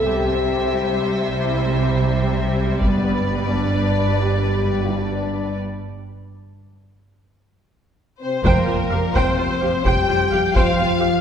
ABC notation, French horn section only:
X:1
M:12/8
L:1/8
Q:3/8=86
K:Gmix
V:1 name="French horn section"
G6 E3 z3 | B,3 D3 G3 D3 | z8 z3 C | [K:Cphr] B,3 C3 G3 F3 |]